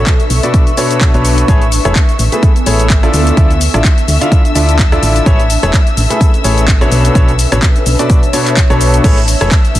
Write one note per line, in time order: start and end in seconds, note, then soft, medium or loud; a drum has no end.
0.00 1.48 D4 medium
0.00 0.22 A4 medium
0.00 2.15 B4 medium
0.00 1.47 E5 medium
0.00 4.00 C#6 medium
0.00 1.47 E6 medium
0.06 kick loud
0.06 clap loud
0.06 closed hi-hat soft
0.06 shaker soft
0.20 closed hi-hat soft
0.20 shaker soft
0.30 0.40 B1 medium
0.30 1.48 A5 medium
0.30 open hi-hat medium
0.30 shaker medium
0.43 0.62 B2 medium
0.43 0.62 D4 medium
0.43 0.62 F#4 medium
0.43 0.62 A4 medium
0.43 0.62 B4 medium
0.43 0.62 D5 medium
0.43 closed hi-hat soft
0.43 shaker soft
0.54 kick loud
0.54 closed hi-hat soft
0.54 shaker soft
0.67 closed hi-hat soft
0.67 shaker soft
0.77 1.11 B2 medium
0.77 1.11 D4 medium
0.77 1.11 F#4 medium
0.77 1.11 A4 medium
0.77 1.11 B4 medium
0.77 1.11 C#5 loud
0.77 open hi-hat loud
0.77 shaker medium
0.91 closed hi-hat soft
0.91 shaker soft
1.01 kick loud
1.01 clap loud
1.01 closed hi-hat medium
1.01 shaker soft
1.14 1.44 B1 medium
1.14 1.46 B2 medium
1.14 1.46 D4 medium
1.14 1.46 F#4 medium
1.14 1.46 A4 medium
1.14 1.46 B4 medium
1.14 1.46 C#5 medium
1.14 closed hi-hat soft
1.14 shaker soft
1.25 open hi-hat medium
1.25 shaker medium
1.38 closed hi-hat soft
1.38 shaker soft
1.48 1.79 A1 loud
1.48 1.62 A3 medium
1.48 4.00 B3 medium
1.48 1.62 E4 medium
1.48 1.62 G#4 medium
1.48 1.62 A4 medium
1.48 1.62 B4 medium
1.48 1.62 C#5 loud
1.48 9.03 E5 medium
1.48 9.03 E6 medium
1.48 kick loud
1.48 closed hi-hat soft
1.48 shaker soft
1.62 4.00 A4 medium
1.62 closed hi-hat soft
1.62 shaker soft
1.72 open hi-hat loud
1.72 shaker medium
1.85 1.93 E1 medium
1.85 1.96 A3 medium
1.85 1.96 E4 medium
1.85 1.96 G#4 medium
1.85 1.96 A4 medium
1.85 1.96 B4 medium
1.85 1.96 C#5 loud
1.85 cross-stick medium
1.85 closed hi-hat medium
1.85 shaker soft
1.96 kick loud
1.96 clap loud
1.96 closed hi-hat soft
1.96 shaker soft
2.09 closed hi-hat soft
2.09 shaker soft
2.19 2.29 A1 medium
2.19 open hi-hat medium
2.19 shaker medium
2.32 2.51 A3 medium
2.32 2.51 E4 medium
2.32 2.51 G#4 medium
2.32 2.51 A4 medium
2.32 2.51 B4 medium
2.32 2.51 E5 medium
2.32 closed hi-hat soft
2.32 shaker soft
2.43 kick loud
2.43 closed hi-hat medium
2.43 shaker soft
2.56 closed hi-hat soft
2.56 shaker soft
2.66 3.09 A1 medium
2.66 2.86 A3 medium
2.66 2.86 E4 medium
2.66 2.86 G#4 medium
2.66 2.86 A4 medium
2.66 2.86 B4 medium
2.66 2.86 C#5 medium
2.66 open hi-hat loud
2.66 shaker medium
2.80 closed hi-hat soft
2.80 shaker soft
2.90 kick loud
2.90 clap loud
2.90 closed hi-hat medium
2.90 shaker soft
3.03 3.35 D3 medium
3.03 3.35 E4 medium
3.03 3.35 F4 medium
3.03 3.35 A4 medium
3.03 3.35 D5 medium
3.03 3.35 E5 loud
3.03 cross-stick medium
3.03 closed hi-hat soft
3.03 shaker soft
3.14 3.31 D2 loud
3.14 5.26 D4 medium
3.14 open hi-hat medium
3.14 shaker medium
3.27 closed hi-hat soft
3.27 shaker soft
3.32 5.93 E5 medium
3.37 3.68 D2 medium
3.37 3.51 D3 medium
3.37 3.51 E4 medium
3.37 3.51 F4 medium
3.37 3.51 A4 medium
3.37 3.51 D5 medium
3.37 3.51 E5 loud
3.37 kick loud
3.37 closed hi-hat medium
3.37 shaker soft
3.51 closed hi-hat soft
3.51 shaker soft
3.61 5.26 A5 medium
3.61 open hi-hat loud
3.61 shaker medium
3.74 3.82 A1 medium
3.74 3.85 D3 medium
3.74 3.85 E4 medium
3.74 3.85 F4 medium
3.74 3.85 A4 medium
3.74 3.85 D5 medium
3.74 3.85 E5 loud
3.74 cross-stick medium
3.74 closed hi-hat medium
3.74 shaker soft
3.84 kick loud
3.84 clap loud
3.84 closed hi-hat medium
3.84 shaker soft
3.98 closed hi-hat soft
3.98 shaker soft
4.08 4.18 D2 medium
4.08 open hi-hat medium
4.08 shaker medium
4.21 4.40 D3 medium
4.21 4.40 E4 medium
4.21 4.40 F4 medium
4.21 4.40 A4 medium
4.21 4.40 D5 medium
4.21 4.40 F5 medium
4.21 closed hi-hat medium
4.21 shaker soft
4.32 kick loud
4.32 closed hi-hat medium
4.32 shaker soft
4.45 closed hi-hat soft
4.45 shaker soft
4.55 4.98 D2 medium
4.55 4.75 D3 medium
4.55 4.75 E4 medium
4.55 4.75 F4 medium
4.55 4.75 A4 medium
4.55 4.75 D5 medium
4.55 4.75 E5 loud
4.55 open hi-hat loud
4.55 shaker medium
4.69 closed hi-hat medium
4.69 shaker soft
4.79 kick loud
4.79 clap loud
4.79 closed hi-hat soft
4.79 shaker soft
4.92 5.24 D3 medium
4.92 5.24 E4 medium
4.92 5.24 F4 medium
4.92 5.24 A4 medium
4.92 5.24 D5 medium
4.92 5.24 E5 loud
4.92 cross-stick medium
4.92 closed hi-hat soft
4.92 shaker soft
5.03 5.20 A1 medium
5.03 open hi-hat medium
5.03 shaker medium
5.16 closed hi-hat medium
5.16 shaker soft
5.26 5.57 A1 loud
5.26 5.40 A3 medium
5.26 6.92 C#4 medium
5.26 5.40 E4 medium
5.26 5.40 G#4 medium
5.26 5.40 A4 medium
5.26 5.40 B4 medium
5.26 5.40 C#5 loud
5.26 kick loud
5.26 closed hi-hat medium
5.26 shaker soft
5.30 7.78 A4 medium
5.39 9.04 B4 medium
5.39 closed hi-hat soft
5.39 shaker soft
5.50 open hi-hat loud
5.50 shaker medium
5.63 5.71 E1 medium
5.63 5.74 A3 medium
5.63 5.74 E4 medium
5.63 5.74 G#4 medium
5.63 5.74 A4 medium
5.63 5.74 B4 medium
5.63 5.74 C#5 loud
5.63 cross-stick medium
5.63 closed hi-hat medium
5.63 shaker soft
5.73 kick loud
5.73 clap loud
5.73 closed hi-hat medium
5.73 shaker soft
5.87 closed hi-hat soft
5.87 shaker soft
5.97 6.07 A1 medium
5.97 open hi-hat medium
5.97 shaker medium
6.10 6.29 A3 medium
6.10 6.29 E4 medium
6.10 6.29 G#4 medium
6.10 6.29 A4 medium
6.10 6.29 B4 medium
6.10 6.29 E5 medium
6.10 closed hi-hat medium
6.10 shaker soft
6.21 kick loud
6.21 closed hi-hat medium
6.21 shaker soft
6.34 closed hi-hat soft
6.34 shaker soft
6.44 6.87 A1 medium
6.44 6.64 A3 medium
6.44 6.64 E4 medium
6.44 6.64 G#4 medium
6.44 6.64 A4 medium
6.44 6.64 B4 medium
6.44 6.64 C#5 medium
6.44 open hi-hat loud
6.44 shaker medium
6.58 closed hi-hat medium
6.58 shaker soft
6.68 kick loud
6.68 clap loud
6.68 closed hi-hat medium
6.68 shaker soft
6.81 7.13 B2 medium
6.81 7.13 D4 medium
6.81 7.13 F#4 medium
6.81 7.13 A4 medium
6.81 7.13 B4 medium
6.81 7.13 C#5 loud
6.81 cross-stick medium
6.81 closed hi-hat soft
6.81 shaker soft
6.92 7.09 B1 loud
6.92 9.04 D4 medium
6.92 open hi-hat medium
6.92 shaker medium
7.05 closed hi-hat medium
7.05 shaker soft
7.15 7.46 B1 loud
7.15 7.29 B2 medium
7.15 7.29 D4 medium
7.15 7.29 F#4 medium
7.15 7.29 A4 medium
7.15 7.29 B4 medium
7.15 7.29 C#5 loud
7.15 kick loud
7.15 closed hi-hat medium
7.15 shaker soft
7.23 9.04 C#5 medium
7.28 closed hi-hat soft
7.28 shaker soft
7.33 9.04 A5 medium
7.39 open hi-hat loud
7.39 shaker medium
7.52 7.60 A1 medium
7.52 7.63 B2 loud
7.52 7.63 D4 medium
7.52 7.63 F#4 medium
7.52 7.63 A4 medium
7.52 7.63 B4 medium
7.52 7.63 C#5 loud
7.52 cross-stick medium
7.52 closed hi-hat medium
7.52 shaker soft
7.62 kick loud
7.62 clap loud
7.62 closed hi-hat medium
7.62 shaker soft
7.76 closed hi-hat soft
7.76 shaker soft
7.86 7.96 B1 medium
7.86 open hi-hat medium
7.86 shaker medium
7.99 8.18 B2 medium
7.99 8.18 D4 medium
7.99 8.18 F#4 medium
7.99 8.18 A4 medium
7.99 8.18 B4 medium
7.99 8.18 D5 medium
7.99 closed hi-hat medium
7.99 shaker soft
8.10 kick loud
8.10 closed hi-hat medium
8.10 shaker soft
8.23 closed hi-hat soft
8.23 shaker soft
8.33 8.53 B2 medium
8.33 8.53 D4 medium
8.33 8.53 F#4 medium
8.33 8.53 A4 medium
8.33 8.53 B4 medium
8.33 8.53 C#5 medium
8.33 open hi-hat loud
8.33 shaker medium
8.47 clap soft
8.47 closed hi-hat medium
8.47 shaker soft
8.57 kick loud
8.57 clap loud
8.57 closed hi-hat medium
8.57 shaker soft
8.70 9.00 B1 medium
8.70 9.02 B2 medium
8.70 9.02 D4 medium
8.70 9.02 F#4 medium
8.70 9.02 A4 medium
8.70 9.02 B4 medium
8.70 9.02 C#5 loud
8.70 cross-stick medium
8.70 closed hi-hat soft
8.70 shaker soft
8.81 open hi-hat medium
8.81 shaker medium
8.94 closed hi-hat medium
8.94 shaker soft
9.04 9.35 A1 loud
9.04 9.18 A3 loud
9.04 9.18 E4 medium
9.04 9.18 G#4 medium
9.04 9.18 A4 medium
9.04 9.18 B4 medium
9.04 9.18 C#5 loud
9.04 9.80 E5 medium
9.04 9.80 E6 medium
9.04 kick loud
9.04 closed hi-hat medium
9.04 crash loud
9.04 shaker soft
9.17 closed hi-hat soft
9.17 shaker soft
9.28 open hi-hat loud
9.28 shaker medium
9.41 9.49 E1 medium
9.41 9.52 A3 loud
9.41 9.52 E4 medium
9.41 9.52 G#4 medium
9.41 9.52 A4 medium
9.41 9.52 B4 medium
9.41 9.52 C#5 loud
9.41 cross-stick medium
9.41 closed hi-hat medium
9.41 shaker soft
9.51 kick loud
9.51 clap loud
9.51 closed hi-hat medium
9.51 shaker soft
9.65 closed hi-hat soft
9.65 shaker soft
9.75 9.80 A1 medium
9.75 open hi-hat loud
9.75 shaker medium